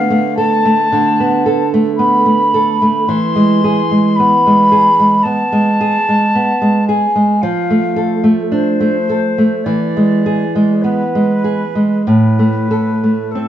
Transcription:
Already playing: D3 B3 F5
0.10 A3
0.37 A4 A5
0.65 A3
0.92 D3
1.20 B3
1.46 A4
1.74 A3
1.97 B3 B5
2.26 A3
2.54 A4
2.82 A3
3.08 E3 C6
3.36 G#3
3.64 G#4
3.91 G#3
4.16 B3 B5
4.47 G#3
4.72 G#4
4.99 G#3
5.23 B3 A5
5.52 G#3
5.81 G#4
6.09 G#3
6.35 B3
6.62 G#3
6.88 G#4 G#5
7.16 G#3
7.42 F3 F5
7.70 A3
7.96 A4
8.24 A3
8.52 D4 C5
8.80 A3
9.09 A4
9.38 A3
9.64 E3 D5
9.97 G#3
10.26 G#4
10.55 G#3
10.82 B3 B4
11.15 G#3
11.44 G#4
11.75 G#3
12.05 A2 B4
12.39 A3
12.71 A4
13.04 A3
13.31 A4
13.35 C4

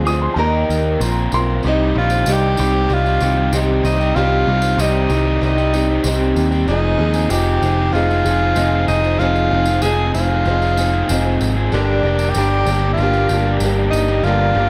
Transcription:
Already playing: D2 G#4 C5 F5 C6
0.05 F2 C3 F3 G#3 C4 F4 G#4 D#6, tambourine
0.22 C6
0.34 D#2 D#3 G3 A5 A#5
0.38 A#3 D#4 G4 A#4 D#5 A#5
0.69 D#2, tambourine
1.00 A#1 A#2 F3 A#3 C4 F4 C5, tambourine
1.04 F4 A#4
1.32 B1 F4 A#4 C6, tambourine
1.37 C4
1.63 C2 C3 D#3 G3 C4 D#4 G4, tambourine
1.68 D#4
1.95 A#1 D#3 G3 C4 F4 G4
2.00 C4 D#4
2.10 G3 C4 G4, tambourine
2.24 C2 C3 D#3 G3 C4 G4, tambourine
2.29 D#4 G4
2.56 C2 D#3 G3 C4 D#4 G4, tambourine
2.72 G3 C4 G4
2.89 C2 G3 C4 D#4 G4, tambourine
2.93 F4
3.04 G3 C4 G4, tambourine
3.20 C2 D#3 G3 C4 D#4 G4, tambourine
3.35 G3 C4 G4
3.51 C2 C3 D#3 G3 C4 G4, tambourine
3.55 D#4
3.67 G3 C4 G4
3.84 C2 D#4, tambourine
3.98 G3 C4 G4, tambourine
4.14 C2 C3 D#3 G3 C4 F4 G4, tambourine
4.18 D#4
4.44 C2 D#3 G3 C4 G4
4.50 C4 D#4
4.61 G3 C4 G4, tambourine
4.77 C2 C3 D#3 G3 C4 D#4 G4, tambourine
5.09 C2 D#3 G3 C4 D#4 G4, tambourine
5.26 G3 C4 G4
5.41 C2 G3 C4 D#4 G4, tambourine
5.46 D#4
5.57 G3 C4 G4, tambourine
5.73 D#3 G3 C4 D#4 G4, tambourine
5.88 G3 C4 G4
6.04 C2 C3 D#3 G3 C4 D#4 G4, tambourine
6.20 G3 C4 G4
6.36 D#2, tambourine
6.51 G3 C4 G4, tambourine
6.66 F1 F2 C3 F3 G#3 C4 D#4 G#4, tambourine
6.98 D#2 F3 G#3 C4 D#4 G#4
7.14 F3 G#3 C4 G#4, tambourine
7.29 F1 F2 C3 F3 G#3 C4 D#4 G4 G#4, tambourine
7.62 F1 F3 G#3 C4 D#4, tambourine
7.66 G#4
7.78 F3 G#3 C4 G#4
7.92 F1 F3 C4 D#4 F4 G#4, tambourine
8.10 F3 G#3 C4 G#4, tambourine
8.25 F1 F3 G#3 C4 D#4 G#4, tambourine
8.29 G#4
8.42 F3 G#3 C4 G#4
8.56 F1 F2 C3 F3 G#3 D#4, tambourine
8.60 C4 G#4
8.72 F3 G#3 C4 G#4
8.88 F1 D#4, tambourine
9.03 F3 G#3 C4 G#4, tambourine
9.19 F1 F2 C3 F3 G#3 C4 D#4 F4 G#4, tambourine
9.36 tambourine
9.51 F1 F3 G#3 C4 D#4 G#4
9.66 G#3 C4 G#4, tambourine
9.70 F3
9.82 F1 F2 C3 F3 G#3 C4 D#4 G#4, tambourine
10.14 F1 F3 G#3 C4 D#4 F4 G#4, tambourine
10.29 F3 G#3 C4 G#4
10.45 F1 F3 C4 D#4, tambourine
10.50 G#4
10.62 F3 G#3 C4 G#4, tambourine
10.77 F3 G#3 C4 D#4 G#4, tambourine
10.91 F3 G#3 C4 G#4
11.06 F1 F2 C3 F3 G#3 C4 G#4, tambourine
11.11 D#4
11.24 F3 G#3 C4 G#4, tambourine
11.41 G#1, tambourine
11.56 F3 G#3 C4 G#4
11.72 G1 G2 D3 G3 A#3 D4 G4 A#4 D5 A#5, tambourine
12.03 F1 G3 A#3 D4 G4
12.19 G3 A#3 D4 G4, tambourine
12.30 G4
12.34 G1 G2 D3 G3 A#3 D4 G4, tambourine
12.66 G1 G3 A#3 D4 G4, tambourine
12.71 G3
12.82 G3 A#3 D4 G4
12.93 F4
12.98 G1 G3 A#3, tambourine
13.02 D4 G4
13.13 G3 A#3 D4 G4, tambourine
13.29 G1 G3 A#3 D4 G4, tambourine
13.35 G3 A#3
13.46 G3 A#3 D4 G4
13.60 G1 G2 D3 G3 A#3 D4 G4, tambourine
13.78 G3 A#3 D4 G4
13.91 G1 D#4, tambourine
14.08 G3 A#3 D4 G4, tambourine
14.24 G1 G2 D3 G3 A#3 D4 F4 G4, tambourine
14.53 G1 G3 A#3 D4 G4
14.59 G3 A#3

